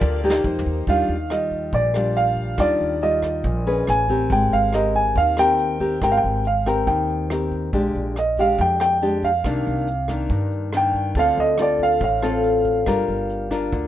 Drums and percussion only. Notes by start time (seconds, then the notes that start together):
0.01 kick, high tom
0.30 snare
0.44 kick
0.59 floor tom
0.87 kick, closed hi-hat
1.09 closed hi-hat
1.30 cross-stick, closed hi-hat
1.51 kick, closed hi-hat
1.73 kick, closed hi-hat
1.94 cross-stick
2.16 closed hi-hat
2.37 kick, closed hi-hat
2.58 kick, cross-stick, closed hi-hat
2.80 closed hi-hat
3.01 closed hi-hat
3.23 kick, cross-stick
3.44 kick, closed hi-hat
3.66 closed hi-hat
3.87 cross-stick, closed hi-hat
4.09 kick, closed hi-hat
4.30 kick, closed hi-hat
4.51 closed hi-hat
4.73 cross-stick, closed hi-hat
4.94 kick, closed hi-hat
5.16 kick, closed hi-hat
5.37 cross-stick, closed hi-hat
5.59 closed hi-hat
5.80 kick, closed hi-hat
6.02 kick, cross-stick, closed hi-hat
6.23 closed hi-hat
6.44 closed hi-hat
6.66 kick, cross-stick, closed hi-hat
6.87 kick, closed hi-hat
7.09 closed hi-hat
7.30 cross-stick, closed hi-hat
7.52 kick, closed hi-hat
7.73 kick, closed hi-hat
7.95 closed hi-hat
8.16 cross-stick, closed hi-hat
8.37 kick, closed hi-hat
8.59 kick, closed hi-hat
8.80 cross-stick, closed hi-hat
9.02 closed hi-hat
9.23 kick, closed hi-hat
9.44 kick, cross-stick, closed hi-hat
9.66 closed hi-hat
9.87 closed hi-hat
10.08 kick, cross-stick, closed hi-hat
10.30 kick, closed hi-hat
10.51 closed hi-hat
10.73 cross-stick, closed hi-hat
10.94 kick, closed hi-hat
11.15 kick, closed hi-hat
11.37 closed hi-hat
11.58 cross-stick, closed hi-hat
11.79 kick, closed hi-hat
12.01 kick, closed hi-hat
12.22 cross-stick, closed hi-hat
12.44 closed hi-hat
12.65 kick, closed hi-hat
12.86 kick, cross-stick, closed hi-hat
13.08 closed hi-hat
13.29 closed hi-hat
13.51 kick, cross-stick
13.73 kick, closed hi-hat